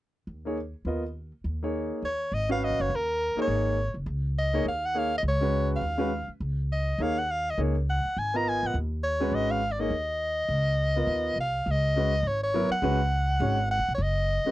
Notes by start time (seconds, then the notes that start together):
0.27 D#2
0.45 A#3 D#4 G#4 C#5
0.85 D#2 B3 F4 A#4 D#5
1.44 D#2
1.63 A#3 D#4 G#4 C#5
2.02 D#2 C#5
2.32 G#1 D#5
2.49 C#4 F#4 B4 F5
2.64 D#5
2.70 A#1
2.80 F#1 C#5
2.90 D#2
2.95 A#4
3.36 A#3 D#4 G#4 C#5, muted upright bass stroke
3.42 C#5
3.48 G#1
3.94 F#1
4.06 C#2
4.38 D#5
4.53 A#3 D#4 G#4 C#5
4.65 D#2 F5
4.86 F#5
4.94 A#3 D#4 G#4 C#5
4.98 F5
5.18 D#5
5.23 C#2
5.28 C#5
5.41 G#3 C#4 F#4 B4
5.76 F5
5.81 D#2
5.98 G#3 C#4 F#4 B4
6.28 muted upright bass stroke
6.40 C#2
6.72 D#5
6.98 D#2 A#3 D#4 G#4 C#5 F5
7.18 F#5
7.31 F5
7.50 D#5
7.58 C#2 A#3 D#4 G#4 C#5
7.90 F#5
8.05 muted upright bass stroke
8.17 G#1 G#5
8.34 B3 F4 A#4 D#5 A#5
8.49 G#5
8.63 A1 F#5
8.74 D#2
9.03 C#5
9.20 G#3 C#4 F#4 B4
9.32 G#1 D#5
9.51 F5
9.72 D5
9.79 A#3 D#4 G#4 C#5 D#5
9.90 D#2
10.49 C#2
10.96 B3 F4 A#4 D#5
11.07 D#2
11.36 C2
11.40 F5
11.66 C#2
11.71 D#5
11.96 G#3 C#4 F#4 B4
12.23 G#1
12.27 C#5
12.43 C#5
12.54 F#3 B3 E4 A#4
12.69 F#5, muted upright bass stroke
12.82 C#2 G#3 C#4 F#4 B4
13.40 G#1 G#3 C#4 F#4 C#5
13.71 F#5
13.79 A#1
13.88 B1
13.94 C#5
13.98 F#1
14.02 D#5
14.45 G#3 C#4 F#4 B4, muted upright bass stroke